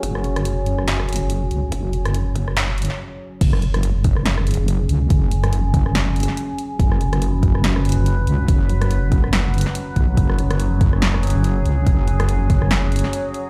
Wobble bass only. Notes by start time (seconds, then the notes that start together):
0.03 F#1
0.79 F#1
1.21 F#1
1.51 C#2
1.72 F#1
2.48 F#1
3.41 F#1
4.17 F#1
4.59 F#1
4.89 C#2
5.10 F#1
5.86 F#1
6.79 F#1
7.55 F#1
7.97 F#1
8.27 C#2
8.48 F#1
9.24 F#1
9.96 B1
10.17 F#1
10.93 F#1
11.35 F#1
11.65 C#2
11.87 F#1
12.62 F#1